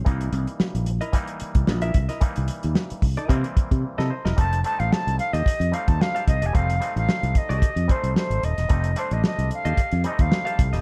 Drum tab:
HH |xxxx-xxxxxxx-xxx|xxxx-xoxxxxx----|xxxx-xxxxxxx-xxx|xxxx-xxxxxxx-xxx|
SD |----o-------o--o|----o--------o-o|----o-------o---|----o-------o--o|
BD |o-------o--o--o-|o-----o-o-oo----|o-------o--o--o-|o-----o-o-o-----|

HH |xxxx-xxxxxxx-xxx|
SD |----o-------o--o|
BD |o-------o--o--o-|